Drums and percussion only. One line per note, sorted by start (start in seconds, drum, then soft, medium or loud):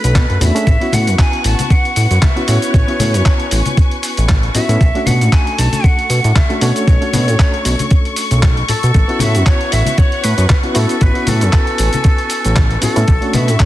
0.04 closed hi-hat medium
0.04 shaker soft
0.15 kick loud
0.15 clap loud
0.15 closed hi-hat medium
0.15 high conga medium
0.15 shaker soft
0.30 closed hi-hat soft
0.41 open hi-hat loud
0.41 low conga medium
0.41 shaker medium
0.56 closed hi-hat medium
0.56 shaker soft
0.67 kick loud
0.67 closed hi-hat medium
0.67 shaker soft
0.81 closed hi-hat soft
0.92 open hi-hat loud
0.92 high conga medium
0.92 low conga medium
0.92 shaker medium
1.07 closed hi-hat medium
1.07 shaker soft
1.19 kick loud
1.19 clap loud
1.19 closed hi-hat medium
1.19 shaker soft
1.33 closed hi-hat soft
1.44 open hi-hat loud
1.44 shaker medium
1.59 closed hi-hat medium
1.59 high conga medium
1.59 shaker soft
1.70 kick loud
1.70 closed hi-hat medium
1.70 shaker soft
1.85 closed hi-hat soft
1.96 open hi-hat loud
1.96 shaker medium
2.11 closed hi-hat medium
2.11 shaker soft
2.22 kick loud
2.22 clap loud
2.22 closed hi-hat medium
2.22 high conga loud
2.22 shaker soft
2.37 closed hi-hat soft
2.48 open hi-hat loud
2.48 shaker medium
2.62 closed hi-hat medium
2.62 shaker soft
2.74 kick loud
2.74 closed hi-hat medium
2.74 shaker soft
2.88 closed hi-hat soft
2.99 open hi-hat loud
2.99 high conga loud
2.99 low conga medium
2.99 shaker medium
3.14 closed hi-hat medium
3.14 shaker soft
3.25 kick loud
3.25 clap loud
3.25 closed hi-hat medium
3.25 shaker soft
3.40 closed hi-hat soft
3.51 open hi-hat loud
3.51 shaker medium
3.66 closed hi-hat medium
3.66 high conga medium
3.66 shaker soft
3.77 kick loud
3.77 closed hi-hat medium
3.77 shaker soft
3.91 closed hi-hat soft
4.03 open hi-hat loud
4.03 shaker medium
4.17 closed hi-hat medium
4.17 shaker soft
4.29 kick loud
4.29 clap loud
4.29 closed hi-hat medium
4.29 high conga medium
4.29 shaker soft
4.43 closed hi-hat soft
4.55 open hi-hat loud
4.55 low conga medium
4.55 shaker medium
4.69 closed hi-hat medium
4.69 shaker soft
4.81 kick loud
4.81 closed hi-hat medium
4.81 shaker soft
4.95 closed hi-hat soft
5.06 open hi-hat loud
5.06 high conga loud
5.06 low conga medium
5.06 shaker medium
5.21 closed hi-hat medium
5.21 shaker soft
5.32 kick loud
5.32 clap loud
5.32 closed hi-hat medium
5.32 shaker soft
5.47 closed hi-hat soft
5.58 open hi-hat loud
5.58 shaker medium
5.73 closed hi-hat soft
5.73 high conga medium
5.73 shaker soft
5.84 kick loud
5.84 closed hi-hat soft
5.84 shaker soft
5.99 closed hi-hat soft
6.10 open hi-hat loud
6.10 shaker medium
6.24 closed hi-hat medium
6.24 shaker soft
6.36 kick loud
6.36 clap loud
6.36 closed hi-hat medium
6.36 high conga medium
6.36 shaker soft
6.50 closed hi-hat soft
6.61 open hi-hat loud
6.61 shaker medium
6.76 closed hi-hat soft
6.76 shaker soft
6.88 kick loud
6.88 closed hi-hat medium
6.88 shaker soft
7.02 closed hi-hat soft
7.13 open hi-hat loud
7.13 high conga loud
7.13 low conga medium
7.13 shaker medium
7.28 closed hi-hat soft
7.28 shaker soft
7.39 kick loud
7.39 clap loud
7.39 closed hi-hat medium
7.39 shaker soft
7.54 closed hi-hat soft
7.65 open hi-hat loud
7.65 shaker medium
7.79 closed hi-hat soft
7.79 high conga medium
7.79 shaker soft
7.91 kick loud
7.91 closed hi-hat medium
7.91 shaker soft
8.05 closed hi-hat soft
8.16 open hi-hat loud
8.16 shaker medium
8.31 closed hi-hat medium
8.31 shaker soft
8.42 kick loud
8.42 clap loud
8.42 closed hi-hat medium
8.42 high conga medium
8.42 shaker soft
8.57 closed hi-hat soft
8.69 open hi-hat loud
8.69 low conga medium
8.69 shaker medium
8.83 closed hi-hat soft
8.83 shaker soft
8.94 kick loud
8.94 closed hi-hat medium
8.94 shaker soft
9.09 closed hi-hat soft
9.19 open hi-hat loud
9.19 high conga loud
9.19 low conga medium
9.19 shaker medium
9.35 closed hi-hat soft
9.35 shaker soft
9.46 kick loud
9.46 clap loud
9.46 closed hi-hat soft
9.46 shaker soft
9.61 closed hi-hat soft
9.72 open hi-hat loud
9.72 shaker medium
9.86 closed hi-hat medium
9.86 high conga medium
9.86 shaker soft
9.98 kick loud
9.98 closed hi-hat soft
9.98 shaker soft
10.12 closed hi-hat soft
10.24 open hi-hat loud
10.24 shaker medium
10.38 closed hi-hat medium
10.38 shaker soft
10.49 kick loud
10.49 clap loud
10.49 closed hi-hat medium
10.49 high conga medium
10.49 shaker soft
10.63 closed hi-hat soft
10.75 open hi-hat loud
10.75 shaker medium
10.89 closed hi-hat soft
10.89 shaker soft
11.01 kick loud
11.01 closed hi-hat medium
11.01 shaker soft
11.15 closed hi-hat soft
11.27 open hi-hat loud
11.27 high conga medium
11.27 low conga medium
11.27 shaker medium
11.41 closed hi-hat medium
11.41 shaker soft
11.53 kick loud
11.53 clap loud
11.53 closed hi-hat medium
11.53 shaker soft
11.67 closed hi-hat soft
11.78 open hi-hat loud
11.78 shaker medium
11.93 closed hi-hat medium
11.93 high conga medium
11.93 shaker soft
12.04 kick loud
12.04 closed hi-hat medium
12.04 shaker soft
12.18 closed hi-hat soft
12.30 open hi-hat loud
12.30 shaker medium
12.45 closed hi-hat medium
12.45 shaker soft
12.56 kick loud
12.56 clap loud
12.56 closed hi-hat medium
12.56 high conga loud
12.56 shaker soft
12.71 closed hi-hat soft
12.82 open hi-hat loud
12.82 low conga medium
12.82 shaker medium
12.96 closed hi-hat medium
12.96 shaker soft
13.08 kick loud
13.08 closed hi-hat medium
13.08 shaker soft
13.22 closed hi-hat soft
13.33 open hi-hat loud
13.33 high conga medium
13.33 low conga medium
13.33 shaker medium
13.48 closed hi-hat medium
13.48 shaker soft
13.59 kick loud
13.59 clap loud
13.59 closed hi-hat medium
13.59 shaker soft